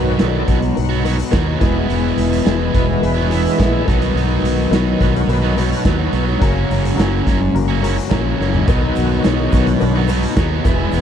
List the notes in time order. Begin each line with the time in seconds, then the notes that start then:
Already playing: B1 B2 D#3 F#3 B3 D#4 F#4 B4
0.18 B1 B2 D#3 F#3 B3 D#4 F#4 A4 B4, snare, closed hi-hat
0.23 D5
0.47 B1 D#3 F#3 B3 F#4 F#5, kick, closed hi-hat
0.61 muted overdriven electric guitar stroke, closed hi-hat
0.75 B1 D#4 F#4 B4, closed hi-hat
0.89 F#3 B3 F#4
1.03 D#3 F#3 B3 D#4 F#4 B4, closed hi-hat
1.08 B2
1.17 muted overdriven electric guitar stroke, closed hi-hat
1.31 D#2 B2 D#3 F#3 B3 D#4 F#4 B4, kick, snare, closed hi-hat
1.35 D#4
1.45 F#3 B3 F#4
1.58 E1 E2 B2 E3 G#3 B3 E4 G#4 B4, kick, closed hi-hat
1.62 E3 G#4
1.73 G#3 B3 E4
1.87 E1 E3 G#3 B3 E4, closed hi-hat
2.17 E1, closed hi-hat
2.33 closed hi-hat
2.44 E1 E3 G#3 B3 E4 G#4 B4, snare, closed hi-hat
2.72 E1 E3 G#3 B3 E4 A#4, kick, closed hi-hat
2.78 B4
2.87 muted overdriven electric guitar stroke
2.92 F#4
3.00 E1 E2 B2 E3 E4 G#4 A#4 B4, closed hi-hat
3.04 B3 E4 G#4 B4
3.14 G#3 B3 E4
3.19 F#4
3.29 E3 G#3 B3 E4 G#4 C#5, closed hi-hat
3.33 E2 B2
3.44 muted overdriven electric guitar stroke, closed hi-hat
3.57 A#1 E3 G#3 B3 E4 G#4 B4, kick, snare, closed hi-hat
3.72 G#3 B3 E4
3.84 B2 D#3 F#3 B3 D#4 F#4 B4, kick
3.88 B1 B3 D#4 F#4, closed hi-hat
4.00 F#3 B3 D#4, closed hi-hat
4.14 B1 B2 F#3 B3 D#4, closed hi-hat
4.42 B1, closed hi-hat
4.70 B1 B2 F#3 B3 D#4 F#4 B4, snare, closed hi-hat
4.75 D#4
4.97 B2 A#4, kick
5.01 B1 F#3 B3 D#4 B4, closed hi-hat
5.15 F#4, muted overdriven electric guitar stroke, closed hi-hat
5.27 B1 B2 D#3 F#3 B3 D#4 F#4 A#4 B4, closed hi-hat
5.32 F#3 B3 B4
5.42 F#3 B3 D#4 F#4
5.56 B2 F#3 B3 D#4 F#4 B4, closed hi-hat
5.61 F#3 B3
5.71 muted overdriven electric guitar stroke, closed hi-hat
5.84 D#2 B2 F#3 B3 D#4 F#4 B4, kick, snare, closed hi-hat
6.00 F#3 B3 D#4
6.13 B1 B2 F#3 B3 D#4, closed hi-hat
6.28 F#3 B3 D#4
6.39 F#1 F#2 C#3 C#4 F#4 A#4, kick, closed hi-hat
6.43 F#3 A#3 C#4
6.70 F#1, closed hi-hat
6.85 closed hi-hat
6.95 F#1 F#2 C#3 C#4 F#4 A#4
6.99 F#3 A#3 C#4, snare, closed hi-hat
7.26 F#1 C#3 F#3 A#3 C#4, kick, closed hi-hat
7.41 muted overdriven electric guitar stroke
7.53 F#1 C#3 F#3 A#3 C#4 F#4 A#4, closed hi-hat
7.68 F#3 A#3 C#4
7.81 C#3 F#3 A#3 C#4 F#4 A#4, closed hi-hat
7.85 F#2 C#4
7.97 muted overdriven electric guitar stroke, closed hi-hat
8.09 A#1 F#2 C#3 F#3 A#3 C#4 F#4 A#4, kick, snare, closed hi-hat
8.13 F#4
8.24 F#3 A#3 C#4
8.38 F#1 C#3 F#3 A#3 C#4 C#5, snare
8.52 F#3 A#3 C#4 D#5, floor tom
8.66 B1 B2 D#3 F#3 B3 D#4 F#4 B4, kick, closed hi-hat, shaker
8.71 D#4
8.80 A#4
8.85 B4
8.96 B1 F#4, closed hi-hat, shaker
9.10 shaker
9.24 B1 B2 F#3 B3 D#4 F#4 G#4 B4, snare, closed hi-hat, shaker
9.49 B1 B2 F4, kick, shaker
9.53 F#3 B3 D#4 F#4, closed hi-hat
9.67 muted overdriven electric guitar stroke, closed hi-hat, shaker
9.78 B1 D#3 F#3 B3 D4 D#4 F#4 B4, closed hi-hat, shaker
9.96 F#3 B3 D#4
10.06 B2 D#4 F#4 B4, closed hi-hat, shaker
10.11 F#3 B3 D#4
10.23 muted overdriven electric guitar stroke, closed hi-hat
10.35 D#2 B2 F#3 B3 D#4 F#4 G#4, kick, snare, closed hi-hat, shaker
10.39 G#4
10.50 F#3 B3 D#4 A#4
10.56 B4
10.64 E1 E2 B2 E3 G#3 B3 E4 G#4 B4, kick, closed hi-hat, shaker
10.68 G#4
10.78 G#3 B3 E4
10.91 E1 E3 G#3 B3 E4, closed hi-hat, shaker